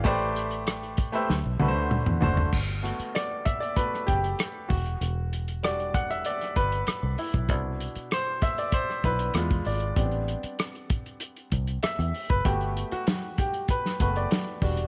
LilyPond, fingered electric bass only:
\new Staff \with { instrumentName = "Fingered electric bass" } { \clef bass \time 4/4 \key g \major \tempo 4 = 97 a,,4.~ a,,16 r16 d,16 b,,16 c,16 d,8 e,16 fis,,8 | g,,8. r4. r16 fis,,8 r8 e,,8 | e,,2 r8 g,,8 r16 c,16 r16 b,,16 | c,8. r4. r16 b,,8 e,8 gis,,8 |
a,,8. r4. r16 c,8 r16 e,16 r16 fis,,16 | g,,8. r4. r16 fis,,8 r8 e,,8 | }